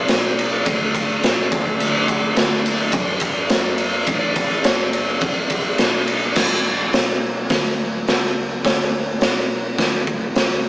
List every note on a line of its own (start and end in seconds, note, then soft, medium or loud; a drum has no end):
0.08 0.64 B1 medium
0.08 snare loud
0.08 ride loud
0.39 ride medium
0.66 1.20 D2 medium
0.66 kick loud
0.66 ride loud
0.95 kick medium
0.95 ride medium
1.23 1.50 B1 medium
1.23 snare loud
1.23 ride loud
1.52 1.78 D2 medium
1.52 kick loud
1.52 ride medium
1.80 2.33 D2 loud
1.80 ride loud
2.08 kick medium
2.08 ride medium
2.36 2.90 D2 medium
2.36 snare loud
2.36 ride loud
2.66 ride medium
2.92 3.47 F#2 loud
2.92 kick loud
2.92 ride loud
3.20 kick medium
3.20 ride medium
3.49 4.04 F#2 loud
3.49 snare loud
3.49 ride loud
3.78 ride medium
4.07 4.61 A1 loud
4.07 kick loud
4.07 ride loud
4.36 kick medium
4.36 ride medium
4.64 5.22 F#1 loud
4.64 snare loud
4.64 ride loud
4.93 ride medium
5.21 5.75 E1 loud
5.21 kick loud
5.21 ride loud
5.50 kick medium
5.50 ride medium
5.78 6.33 B1 medium
5.78 snare loud
5.78 ride loud
6.08 ride medium
6.35 6.91 E1 loud
6.35 kick loud
6.35 snare loud
6.35 crash loud
6.93 7.49 B1 medium
6.93 snare loud
6.93 open hi-hat medium
7.49 8.06 D2 medium
7.49 kick loud
7.49 snare loud
7.49 open hi-hat medium
8.08 8.64 C#2 loud
8.08 snare loud
8.08 open hi-hat medium
8.65 9.20 D2 loud
8.65 kick loud
8.65 snare loud
8.65 open hi-hat medium
9.21 9.77 B1 medium
9.21 snare loud
9.21 open hi-hat medium
9.78 10.34 D2 medium
9.78 kick loud
9.78 snare loud
9.78 open hi-hat medium
10.07 kick medium
10.35 10.69 C#2 medium
10.35 snare loud
10.35 open hi-hat medium